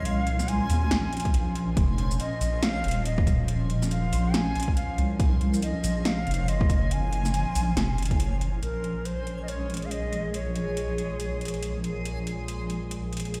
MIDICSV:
0, 0, Header, 1, 6, 480
1, 0, Start_track
1, 0, Key_signature, -5, "minor"
1, 0, Tempo, 428571
1, 60, Time_signature, 4, 2, 24, 8
1, 15008, End_track
2, 0, Start_track
2, 0, Title_t, "Ney"
2, 0, Program_c, 0, 77
2, 61, Note_on_c, 0, 77, 117
2, 539, Note_on_c, 0, 80, 112
2, 556, Note_off_c, 0, 77, 0
2, 1739, Note_off_c, 0, 80, 0
2, 2463, Note_on_c, 0, 75, 102
2, 2943, Note_on_c, 0, 77, 120
2, 2960, Note_off_c, 0, 75, 0
2, 3415, Note_off_c, 0, 77, 0
2, 3421, Note_on_c, 0, 75, 90
2, 3867, Note_off_c, 0, 75, 0
2, 4381, Note_on_c, 0, 77, 101
2, 4859, Note_on_c, 0, 80, 125
2, 4876, Note_off_c, 0, 77, 0
2, 5333, Note_off_c, 0, 80, 0
2, 5339, Note_on_c, 0, 77, 89
2, 5786, Note_off_c, 0, 77, 0
2, 6302, Note_on_c, 0, 75, 91
2, 6782, Note_on_c, 0, 77, 108
2, 6799, Note_off_c, 0, 75, 0
2, 7263, Note_on_c, 0, 75, 103
2, 7280, Note_off_c, 0, 77, 0
2, 7744, Note_on_c, 0, 80, 127
2, 7761, Note_off_c, 0, 75, 0
2, 9422, Note_off_c, 0, 80, 0
2, 9661, Note_on_c, 0, 70, 90
2, 10141, Note_on_c, 0, 72, 90
2, 10157, Note_off_c, 0, 70, 0
2, 10546, Note_off_c, 0, 72, 0
2, 10553, Note_on_c, 0, 75, 70
2, 10617, Note_on_c, 0, 73, 104
2, 10634, Note_off_c, 0, 75, 0
2, 11035, Note_on_c, 0, 77, 73
2, 11052, Note_off_c, 0, 73, 0
2, 11100, Note_on_c, 0, 75, 106
2, 11117, Note_off_c, 0, 77, 0
2, 11574, Note_off_c, 0, 75, 0
2, 11580, Note_on_c, 0, 73, 101
2, 13215, Note_off_c, 0, 73, 0
2, 15008, End_track
3, 0, Start_track
3, 0, Title_t, "Synth texture"
3, 0, Program_c, 1, 99
3, 0, Note_on_c, 1, 61, 81
3, 0, Note_on_c, 1, 84, 83
3, 9660, Note_on_c, 1, 56, 76
3, 9661, Note_on_c, 1, 68, 78
3, 9670, Note_off_c, 1, 61, 0
3, 9670, Note_off_c, 1, 84, 0
3, 15008, Note_off_c, 1, 56, 0
3, 15008, Note_off_c, 1, 68, 0
3, 15008, End_track
4, 0, Start_track
4, 0, Title_t, "Synth drone"
4, 0, Program_c, 2, 95
4, 0, Note_on_c, 2, 46, 80
4, 0, Note_on_c, 2, 53, 79
4, 9646, Note_off_c, 2, 46, 0
4, 9646, Note_off_c, 2, 53, 0
4, 9659, Note_on_c, 2, 46, 74
4, 9659, Note_on_c, 2, 53, 74
4, 15008, Note_off_c, 2, 46, 0
4, 15008, Note_off_c, 2, 53, 0
4, 15008, End_track
5, 0, Start_track
5, 0, Title_t, "Wobble bass"
5, 0, Program_c, 3, 39
5, 0, Note_on_c, 3, 36, 88
5, 663, Note_off_c, 3, 36, 0
5, 780, Note_on_c, 3, 39, 93
5, 1004, Note_off_c, 3, 39, 0
5, 1020, Note_on_c, 3, 34, 84
5, 1150, Note_off_c, 3, 34, 0
5, 1500, Note_on_c, 3, 34, 94
5, 1968, Note_off_c, 3, 34, 0
5, 1979, Note_on_c, 3, 29, 106
5, 2447, Note_off_c, 3, 29, 0
5, 2699, Note_on_c, 3, 34, 99
5, 3179, Note_on_c, 3, 27, 95
5, 3196, Note_off_c, 3, 34, 0
5, 4607, Note_off_c, 3, 27, 0
5, 4619, Note_on_c, 3, 34, 94
5, 5087, Note_off_c, 3, 34, 0
5, 5580, Note_on_c, 3, 36, 89
5, 6423, Note_off_c, 3, 36, 0
5, 6540, Note_on_c, 3, 34, 95
5, 7008, Note_off_c, 3, 34, 0
5, 7019, Note_on_c, 3, 29, 93
5, 7259, Note_on_c, 3, 30, 91
5, 7276, Note_off_c, 3, 29, 0
5, 8343, Note_off_c, 3, 30, 0
5, 8459, Note_on_c, 3, 34, 98
5, 8684, Note_off_c, 3, 34, 0
5, 8699, Note_on_c, 3, 29, 83
5, 8940, Note_on_c, 3, 30, 87
5, 8957, Note_off_c, 3, 29, 0
5, 9647, Note_off_c, 3, 30, 0
5, 9660, Note_on_c, 3, 34, 85
5, 15008, Note_off_c, 3, 34, 0
5, 15008, End_track
6, 0, Start_track
6, 0, Title_t, "Drums"
6, 59, Note_on_c, 9, 42, 83
6, 171, Note_off_c, 9, 42, 0
6, 299, Note_on_c, 9, 42, 54
6, 411, Note_off_c, 9, 42, 0
6, 441, Note_on_c, 9, 38, 38
6, 441, Note_on_c, 9, 82, 74
6, 540, Note_on_c, 9, 42, 83
6, 553, Note_off_c, 9, 38, 0
6, 553, Note_off_c, 9, 82, 0
6, 652, Note_off_c, 9, 42, 0
6, 780, Note_on_c, 9, 46, 89
6, 780, Note_on_c, 9, 82, 83
6, 892, Note_off_c, 9, 46, 0
6, 892, Note_off_c, 9, 82, 0
6, 1020, Note_on_c, 9, 38, 122
6, 1020, Note_on_c, 9, 42, 79
6, 1132, Note_off_c, 9, 38, 0
6, 1132, Note_off_c, 9, 42, 0
6, 1261, Note_on_c, 9, 42, 49
6, 1307, Note_off_c, 9, 42, 0
6, 1307, Note_on_c, 9, 42, 62
6, 1341, Note_off_c, 9, 42, 0
6, 1341, Note_on_c, 9, 42, 79
6, 1401, Note_on_c, 9, 36, 67
6, 1402, Note_off_c, 9, 42, 0
6, 1402, Note_on_c, 9, 42, 36
6, 1500, Note_off_c, 9, 42, 0
6, 1500, Note_on_c, 9, 42, 85
6, 1513, Note_off_c, 9, 36, 0
6, 1612, Note_off_c, 9, 42, 0
6, 1741, Note_on_c, 9, 42, 53
6, 1853, Note_off_c, 9, 42, 0
6, 1980, Note_on_c, 9, 36, 122
6, 1980, Note_on_c, 9, 42, 81
6, 2092, Note_off_c, 9, 36, 0
6, 2092, Note_off_c, 9, 42, 0
6, 2221, Note_on_c, 9, 42, 51
6, 2333, Note_off_c, 9, 42, 0
6, 2363, Note_on_c, 9, 82, 79
6, 2460, Note_on_c, 9, 42, 78
6, 2475, Note_off_c, 9, 82, 0
6, 2572, Note_off_c, 9, 42, 0
6, 2701, Note_on_c, 9, 46, 93
6, 2701, Note_on_c, 9, 82, 81
6, 2813, Note_off_c, 9, 46, 0
6, 2813, Note_off_c, 9, 82, 0
6, 2941, Note_on_c, 9, 38, 124
6, 2941, Note_on_c, 9, 42, 77
6, 3053, Note_off_c, 9, 38, 0
6, 3053, Note_off_c, 9, 42, 0
6, 3180, Note_on_c, 9, 42, 49
6, 3228, Note_off_c, 9, 42, 0
6, 3228, Note_on_c, 9, 42, 61
6, 3261, Note_off_c, 9, 42, 0
6, 3261, Note_on_c, 9, 42, 78
6, 3373, Note_off_c, 9, 42, 0
6, 3421, Note_on_c, 9, 42, 79
6, 3533, Note_off_c, 9, 42, 0
6, 3561, Note_on_c, 9, 36, 109
6, 3660, Note_off_c, 9, 36, 0
6, 3660, Note_on_c, 9, 36, 61
6, 3662, Note_on_c, 9, 42, 49
6, 3662, Note_on_c, 9, 82, 55
6, 3772, Note_off_c, 9, 36, 0
6, 3774, Note_off_c, 9, 42, 0
6, 3774, Note_off_c, 9, 82, 0
6, 3900, Note_on_c, 9, 42, 78
6, 4012, Note_off_c, 9, 42, 0
6, 4142, Note_on_c, 9, 42, 51
6, 4254, Note_off_c, 9, 42, 0
6, 4283, Note_on_c, 9, 38, 35
6, 4283, Note_on_c, 9, 82, 82
6, 4381, Note_on_c, 9, 42, 74
6, 4395, Note_off_c, 9, 38, 0
6, 4395, Note_off_c, 9, 82, 0
6, 4493, Note_off_c, 9, 42, 0
6, 4621, Note_on_c, 9, 46, 99
6, 4621, Note_on_c, 9, 82, 84
6, 4733, Note_off_c, 9, 46, 0
6, 4733, Note_off_c, 9, 82, 0
6, 4861, Note_on_c, 9, 38, 121
6, 4861, Note_on_c, 9, 42, 80
6, 4973, Note_off_c, 9, 38, 0
6, 4973, Note_off_c, 9, 42, 0
6, 5101, Note_on_c, 9, 42, 47
6, 5148, Note_off_c, 9, 42, 0
6, 5148, Note_on_c, 9, 42, 62
6, 5181, Note_off_c, 9, 42, 0
6, 5181, Note_on_c, 9, 42, 76
6, 5241, Note_on_c, 9, 36, 61
6, 5293, Note_off_c, 9, 42, 0
6, 5340, Note_on_c, 9, 42, 78
6, 5353, Note_off_c, 9, 36, 0
6, 5452, Note_off_c, 9, 42, 0
6, 5580, Note_on_c, 9, 42, 50
6, 5692, Note_off_c, 9, 42, 0
6, 5819, Note_on_c, 9, 36, 115
6, 5820, Note_on_c, 9, 42, 82
6, 5931, Note_off_c, 9, 36, 0
6, 5932, Note_off_c, 9, 42, 0
6, 6059, Note_on_c, 9, 42, 51
6, 6171, Note_off_c, 9, 42, 0
6, 6201, Note_on_c, 9, 82, 82
6, 6299, Note_on_c, 9, 42, 76
6, 6313, Note_off_c, 9, 82, 0
6, 6411, Note_off_c, 9, 42, 0
6, 6539, Note_on_c, 9, 46, 102
6, 6539, Note_on_c, 9, 82, 89
6, 6651, Note_off_c, 9, 46, 0
6, 6651, Note_off_c, 9, 82, 0
6, 6779, Note_on_c, 9, 38, 113
6, 6779, Note_on_c, 9, 42, 79
6, 6891, Note_off_c, 9, 38, 0
6, 6891, Note_off_c, 9, 42, 0
6, 7019, Note_on_c, 9, 42, 48
6, 7067, Note_off_c, 9, 42, 0
6, 7067, Note_on_c, 9, 42, 63
6, 7099, Note_off_c, 9, 42, 0
6, 7099, Note_on_c, 9, 42, 76
6, 7211, Note_off_c, 9, 42, 0
6, 7260, Note_on_c, 9, 42, 81
6, 7372, Note_off_c, 9, 42, 0
6, 7401, Note_on_c, 9, 36, 106
6, 7499, Note_off_c, 9, 36, 0
6, 7499, Note_on_c, 9, 36, 59
6, 7500, Note_on_c, 9, 42, 51
6, 7500, Note_on_c, 9, 82, 57
6, 7611, Note_off_c, 9, 36, 0
6, 7612, Note_off_c, 9, 42, 0
6, 7612, Note_off_c, 9, 82, 0
6, 7740, Note_on_c, 9, 42, 81
6, 7852, Note_off_c, 9, 42, 0
6, 7981, Note_on_c, 9, 42, 55
6, 8093, Note_off_c, 9, 42, 0
6, 8122, Note_on_c, 9, 38, 35
6, 8122, Note_on_c, 9, 82, 82
6, 8220, Note_on_c, 9, 42, 86
6, 8234, Note_off_c, 9, 38, 0
6, 8234, Note_off_c, 9, 82, 0
6, 8332, Note_off_c, 9, 42, 0
6, 8461, Note_on_c, 9, 46, 99
6, 8461, Note_on_c, 9, 82, 88
6, 8573, Note_off_c, 9, 46, 0
6, 8573, Note_off_c, 9, 82, 0
6, 8701, Note_on_c, 9, 38, 117
6, 8701, Note_on_c, 9, 42, 85
6, 8813, Note_off_c, 9, 38, 0
6, 8813, Note_off_c, 9, 42, 0
6, 8941, Note_on_c, 9, 42, 50
6, 8988, Note_off_c, 9, 42, 0
6, 8988, Note_on_c, 9, 42, 66
6, 9021, Note_off_c, 9, 42, 0
6, 9021, Note_on_c, 9, 42, 83
6, 9082, Note_on_c, 9, 36, 59
6, 9083, Note_off_c, 9, 42, 0
6, 9083, Note_on_c, 9, 42, 38
6, 9181, Note_off_c, 9, 42, 0
6, 9181, Note_on_c, 9, 42, 85
6, 9194, Note_off_c, 9, 36, 0
6, 9293, Note_off_c, 9, 42, 0
6, 9422, Note_on_c, 9, 42, 54
6, 9534, Note_off_c, 9, 42, 0
6, 9661, Note_on_c, 9, 42, 74
6, 9773, Note_off_c, 9, 42, 0
6, 9901, Note_on_c, 9, 42, 51
6, 10013, Note_off_c, 9, 42, 0
6, 10140, Note_on_c, 9, 42, 72
6, 10252, Note_off_c, 9, 42, 0
6, 10380, Note_on_c, 9, 42, 52
6, 10492, Note_off_c, 9, 42, 0
6, 10620, Note_on_c, 9, 42, 75
6, 10732, Note_off_c, 9, 42, 0
6, 10861, Note_on_c, 9, 42, 44
6, 10908, Note_off_c, 9, 42, 0
6, 10908, Note_on_c, 9, 42, 60
6, 10941, Note_off_c, 9, 42, 0
6, 10941, Note_on_c, 9, 42, 71
6, 11002, Note_off_c, 9, 42, 0
6, 11002, Note_on_c, 9, 42, 33
6, 11101, Note_off_c, 9, 42, 0
6, 11101, Note_on_c, 9, 42, 80
6, 11213, Note_off_c, 9, 42, 0
6, 11341, Note_on_c, 9, 42, 50
6, 11453, Note_off_c, 9, 42, 0
6, 11581, Note_on_c, 9, 42, 77
6, 11693, Note_off_c, 9, 42, 0
6, 11821, Note_on_c, 9, 42, 52
6, 11933, Note_off_c, 9, 42, 0
6, 12061, Note_on_c, 9, 42, 74
6, 12173, Note_off_c, 9, 42, 0
6, 12301, Note_on_c, 9, 42, 52
6, 12413, Note_off_c, 9, 42, 0
6, 12541, Note_on_c, 9, 42, 76
6, 12653, Note_off_c, 9, 42, 0
6, 12781, Note_on_c, 9, 42, 48
6, 12828, Note_off_c, 9, 42, 0
6, 12828, Note_on_c, 9, 42, 64
6, 12861, Note_off_c, 9, 42, 0
6, 12861, Note_on_c, 9, 42, 74
6, 12923, Note_off_c, 9, 42, 0
6, 12923, Note_on_c, 9, 42, 34
6, 13020, Note_off_c, 9, 42, 0
6, 13020, Note_on_c, 9, 42, 78
6, 13132, Note_off_c, 9, 42, 0
6, 13261, Note_on_c, 9, 42, 52
6, 13373, Note_off_c, 9, 42, 0
6, 13501, Note_on_c, 9, 42, 77
6, 13613, Note_off_c, 9, 42, 0
6, 13741, Note_on_c, 9, 42, 51
6, 13853, Note_off_c, 9, 42, 0
6, 13981, Note_on_c, 9, 42, 74
6, 14093, Note_off_c, 9, 42, 0
6, 14221, Note_on_c, 9, 42, 50
6, 14333, Note_off_c, 9, 42, 0
6, 14461, Note_on_c, 9, 42, 76
6, 14573, Note_off_c, 9, 42, 0
6, 14701, Note_on_c, 9, 42, 48
6, 14748, Note_off_c, 9, 42, 0
6, 14748, Note_on_c, 9, 42, 61
6, 14781, Note_off_c, 9, 42, 0
6, 14781, Note_on_c, 9, 42, 76
6, 14843, Note_off_c, 9, 42, 0
6, 14843, Note_on_c, 9, 42, 34
6, 14941, Note_off_c, 9, 42, 0
6, 14941, Note_on_c, 9, 42, 81
6, 15008, Note_off_c, 9, 42, 0
6, 15008, End_track
0, 0, End_of_file